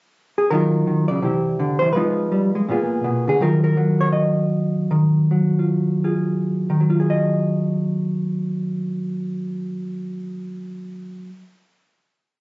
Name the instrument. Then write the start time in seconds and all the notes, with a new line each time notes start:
hollow-body jazz guitar
0.38 G#4
0.50 D#3 F#3 D#4 F4 A#4
0.87 D#3
1.08 C#3 D5
1.22 C3 E3 E4 G4
1.59 D3
1.79 E3 C5
1.93 F3 G#3 B4
1.97 D#4 F4
2.32 G3
2.55 G#3
2.69 A#2 A#3 B3 F4 G#4
3.04 B2
3.28 D3 G#4
3.41 D#3 F#3 F4 A#4
3.64 A#4
3.77 F#3
4.01 C#5
4.13 D#5
4.91 D#3
5.31 F#3
5.59 F4
6.04 F4 G#4
6.70 D#3
6.80 F#3
6.90 F4
7.00 G#4
7.10 D#5